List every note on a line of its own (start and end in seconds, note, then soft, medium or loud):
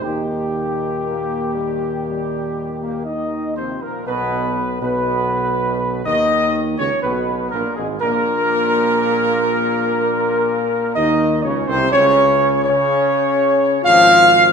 0.03 3.75 D#2 medium
0.03 3.02 A#2 medium
0.03 3.03 D#3 medium
0.03 0.91 A#3 medium
0.03 0.91 D#4 medium
0.03 3.06 G4 medium
1.04 1.51 A#3 medium
1.55 2.02 G3 medium
2.07 2.78 G3 medium
2.82 3.05 A#3 medium
3.05 3.53 D#3 medium
3.05 3.53 D#4 medium
3.05 3.53 D#5 medium
3.56 3.83 C3 medium
3.56 4.04 F3 medium
3.56 3.80 C4 medium
3.56 3.80 C5 medium
3.82 4.06 A#2 medium
3.82 4.08 A#3 medium
3.82 4.08 A#4 medium
4.06 4.78 B1 medium
4.06 4.62 B2 medium
4.06 4.78 B3 medium
4.06 4.78 B4 medium
4.79 6.02 B1 medium
4.79 6.01 B2 medium
4.79 6.02 B3 medium
4.79 6.02 B4 medium
6.04 6.75 D#2 medium
6.04 6.74 D#3 medium
6.04 6.75 D#4 medium
6.04 6.61 D#5 loud
6.78 6.91 C#2 medium
6.78 6.90 C#3 medium
6.78 6.90 C#4 medium
6.78 7.01 C#5 medium
7.03 7.49 B1 medium
7.03 7.49 B2 medium
7.03 7.50 B3 medium
7.03 7.49 B4 medium
7.51 7.64 A#1 medium
7.51 7.76 A#2 medium
7.51 7.64 A#3 medium
7.51 7.75 A#4 medium
7.76 8.01 G#1 medium
7.76 8.00 G#2 medium
7.76 7.89 G#3 medium
7.76 7.87 G#4 medium
8.00 10.65 A#1 medium
8.00 10.91 A#2 medium
8.00 10.93 A#3 medium
8.00 10.91 A#4 loud
10.95 11.41 D#2 medium
10.95 11.45 D#3 medium
10.95 11.41 D#4 loud
10.95 11.40 D#5 loud
11.43 11.67 C#2 medium
11.43 11.68 C#3 medium
11.43 11.56 C#4 medium
11.43 11.68 C#5 medium
11.67 11.91 C2 medium
11.67 11.92 C3 medium
11.67 11.91 C4 medium
11.67 11.92 C5 loud
11.91 12.72 C#2 medium
11.91 12.60 C#4 medium
11.91 12.60 C#5 loud
11.96 12.62 C#3 medium
12.64 13.82 C#3 medium
12.64 13.80 C#4 medium
12.64 13.80 C#5 loud
13.82 14.53 G#1 medium
13.82 14.52 F4 medium
13.82 14.53 F5 loud
13.87 14.53 F3 loud